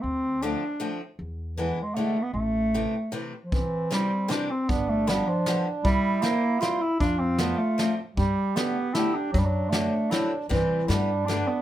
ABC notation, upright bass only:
X:1
M:3/4
L:1/8
Q:1/4=155
K:Am
V:1 name="Upright bass" clef=bass
D,,4 z2 | E,,4 z2 | A,,,4 z2 | [K:C] C,, z4 z |
G,,,4 z2 | C,, z4 z | F,,4 z2 | G,, z4 z |
^F,,4 z2 | G,, z G,,4 |]